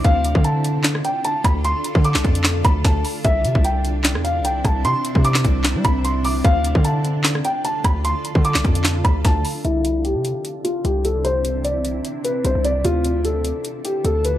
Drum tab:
HH |x-x-x-x-x-x-x-x-|x-x-x-xxx-x-x-o-|x-x-x-x-x-x-x-x-|x-x-x-x-x-x-x-o-|
CP |--------x-------|-----x--x-------|--------x-------|-----x--x-------|
SD |--------or----r-|-----o--o---o---|--------or----r-|-----o--o-------|
BD |o--o----------o-|---o--o---o-o---|o--o----------o-|---o--o---o-----|

HH |x-x-x-x-x-x-x-x-|x-x-x-xxx-x-x-o-|x-x-x-x-x-x-x-x-|x-x-x-x-x-x-x-x-|
CP |--------x-------|-----x--x-------|----------------|----------------|
SD |--------or----r-|-----o--o---o---|----------------|----------------|
BD |o--o----------o-|---o--o---o-o---|----------------|----------------|

HH |x-x-x-x-x-x-x-x-|
CP |----------------|
SD |----------------|
BD |----------------|